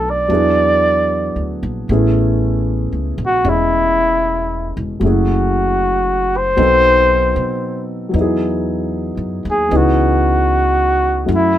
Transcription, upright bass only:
0.00 0.25 B1 medium
0.30 1.31 E2 medium
1.36 1.60 D2 medium
1.63 1.87 A#1 medium
1.89 2.90 A1 medium
2.92 3.17 C#2 soft
3.18 3.43 A#1 medium
3.44 4.73 E1 medium
4.77 5.00 E1 medium
5.01 6.53 F#1 medium
6.57 7.32 B1 medium
7.36 8.10 B2 medium
8.14 9.14 E2 medium
9.17 9.42 F#2 medium
9.45 9.69 D#2 medium
9.71 11.24 C#2 medium
11.28 11.58 F#2 medium

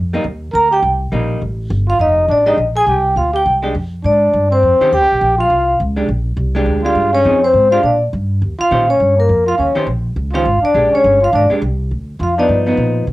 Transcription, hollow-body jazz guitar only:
0.13 0.24 G3 medium
0.13 0.24 A#3 medium
0.13 0.24 D#4 medium
1.12 1.41 G3 medium
1.12 1.41 A#3 medium
1.12 1.42 D#4 medium
2.46 2.57 G#3 medium
2.46 2.57 D4 medium
2.46 2.57 G4 medium
3.63 3.73 G#3 soft
3.63 3.74 D4 medium
3.63 3.74 G4 medium
4.81 4.91 D#3 medium
4.81 4.91 C#4 medium
4.81 4.91 G4 medium
4.81 4.91 C5 medium
5.96 6.07 G#3 medium
5.96 6.07 D4 medium
5.96 6.08 G4 medium
6.55 6.82 G#3 medium
6.55 6.83 D4 medium
6.55 6.83 G4 medium
6.85 7.23 G#3 medium
6.85 7.23 D4 medium
6.85 7.23 G4 medium
7.25 7.41 F3 soft
7.25 7.41 C4 soft
7.25 7.41 D#4 soft
7.25 7.41 G#4 medium
7.72 7.82 G#3 soft
7.72 7.83 D4 soft
7.72 7.83 G4 medium
8.71 8.87 D#3 soft
8.71 8.87 C#4 medium
8.71 8.87 G4 medium
8.71 8.87 C5 medium
9.75 9.86 D#3 medium
9.75 9.86 C#4 medium
9.75 9.86 G4 medium
9.75 9.86 C5 medium
10.33 10.44 D#3 medium
10.33 10.44 C#4 medium
10.33 10.45 G4 medium
10.33 10.45 C5 medium
10.74 11.18 G#3 soft
10.74 11.18 D4 medium
10.74 11.18 G4 medium
11.50 11.61 G#3 medium
11.50 11.61 D4 medium
11.50 11.61 G4 medium
12.38 12.65 F3 soft
12.38 12.66 B3 medium
12.38 12.66 D#4 medium
12.66 13.05 F3 medium
12.66 13.05 B3 medium
12.66 13.06 D#4 medium

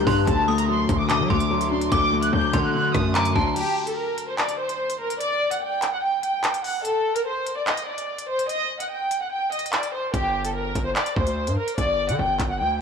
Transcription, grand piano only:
0.00 0.27 D3 medium
0.00 0.30 G3 loud
0.00 0.29 A#3 medium
0.00 0.07 D4 medium
0.07 0.27 D4 medium
0.27 0.88 D3 medium
0.48 1.29 A3 medium
0.69 1.49 F#3 medium
0.89 1.08 D3 medium
1.09 1.90 D3 medium
1.30 2.11 A3 medium
1.51 2.32 F#3 medium
1.71 2.74 D4 medium
1.92 2.52 D3 medium
2.12 2.93 A3 medium
2.33 3.14 F#3 medium
2.53 2.73 D3 medium
2.74 3.56 D3 medium
2.95 3.56 A3 medium
3.15 3.56 F#3 medium
3.36 3.56 D4 medium

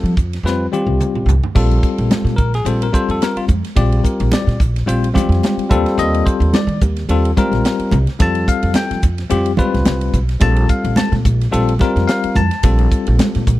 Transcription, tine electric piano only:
0.00 0.13 G3 medium
0.00 0.13 C4 medium
0.00 0.14 F4 medium
0.00 0.14 A4 medium
0.44 0.65 G3 medium
0.44 0.65 C4 medium
0.44 0.65 F4 medium
0.44 0.66 B4 medium
0.72 1.32 G3 medium
0.72 1.32 C4 medium
0.72 1.32 F4 medium
0.72 1.32 G4 medium
1.55 2.35 G3 medium
1.55 2.35 C4 medium
1.55 2.35 F4 medium
1.55 2.35 A4 medium
2.36 2.52 A#4 medium
2.55 2.66 G#4 medium
2.66 2.86 G3 medium
2.66 2.86 C4 medium
2.66 2.87 F4 medium
2.66 2.82 A4 medium
2.66 2.87 C5 medium
2.83 2.94 A#4 medium
2.93 3.53 G3 medium
2.93 3.53 C4 medium
2.93 3.36 F4 medium
2.93 3.10 A4 medium
2.93 3.09 C5 medium
3.11 3.22 A4 medium
3.23 3.37 A#4 medium
3.37 3.44 F4 medium
3.76 4.56 G3 medium
3.76 4.56 C4 medium
3.76 4.56 F4 medium
3.76 4.56 G4 medium
3.76 4.04 D5 medium
4.04 4.31 A#4 medium
4.33 4.60 D5 medium
4.86 5.07 G3 medium
4.86 5.08 C4 medium
4.86 5.08 F4 medium
4.86 5.08 C5 medium
5.14 5.68 G3 medium
5.14 5.69 C4 medium
5.14 5.69 F4 medium
5.14 5.70 G4 medium
5.70 6.59 G3 medium
5.70 6.60 C4 medium
5.70 6.60 F4 medium
5.70 6.60 A4 medium
5.99 6.26 D#5 medium
6.26 6.53 C5 medium
6.55 6.81 D5 medium
7.09 7.30 G3 medium
7.09 7.30 C4 medium
7.09 7.31 F4 medium
7.09 7.31 A4 medium
7.37 7.97 G3 medium
7.37 7.97 C4 medium
7.37 7.97 F4 medium
7.37 7.97 A#4 medium
8.19 8.99 G3 medium
8.19 8.99 C4 medium
8.19 8.99 F4 medium
8.19 9.00 A4 medium
8.19 8.48 A5 loud
8.48 8.75 F5 medium
8.76 9.03 G5 medium
9.30 9.51 G3 medium
9.30 9.51 C4 medium
9.30 9.51 F4 medium
9.30 9.51 G4 medium
9.57 10.18 G3 medium
9.57 10.18 C4 medium
9.57 10.18 F4 medium
9.57 10.18 B4 medium
10.40 11.20 G3 medium
10.40 11.21 C4 medium
10.40 11.21 F4 medium
10.40 11.21 A4 medium
10.40 10.69 A5 medium
10.69 10.96 F5 medium
10.97 11.14 A5 medium
11.52 11.73 G3 medium
11.52 11.73 C4 medium
11.52 11.73 F4 medium
11.52 11.73 A4 medium
11.80 12.40 G3 medium
11.80 12.40 C4 medium
11.80 12.40 F4 medium
11.80 12.41 A#4 medium
12.07 12.35 F5 medium
12.36 13.15 A5 medium
12.64 13.43 G3 medium
12.64 13.43 C4 medium
12.64 13.43 F4 medium
12.64 13.44 A4 medium

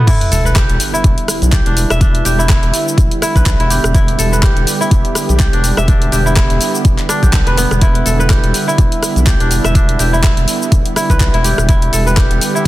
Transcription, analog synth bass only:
0.32 0.66 E1 loud
0.69 0.78 E1 medium
1.04 1.16 E1 loud
1.42 1.62 B1 medium
1.66 1.86 E1 loud
1.90 2.22 E1 loud
2.25 2.59 E1 loud
2.63 2.72 E1 medium
2.98 3.09 E1 loud
3.35 3.55 B1 medium
3.60 3.79 E1 loud
3.84 4.16 E1 loud
4.19 4.53 E1 loud
4.56 4.65 E1 medium
4.91 5.03 E1 loud
5.29 5.49 B1 medium
5.53 5.73 E1 loud
5.77 6.09 E1 loud
6.12 6.46 E1 loud
6.50 6.59 E1 medium
6.85 6.96 E1 loud
7.23 7.42 B1 medium
7.47 7.66 E1 medium
7.71 8.03 E1 medium
8.06 8.40 E1 loud
8.44 8.52 E1 medium
8.78 8.90 E1 loud
9.16 9.36 B1 medium
9.40 9.60 E1 loud
9.65 9.96 E1 loud
9.99 10.33 E1 loud
10.37 10.46 E1 medium
10.72 10.83 E1 loud
11.10 11.29 B1 medium
11.34 11.53 E1 loud
11.58 11.90 E1 loud
11.93 12.27 E1 loud
12.30 12.39 E1 medium

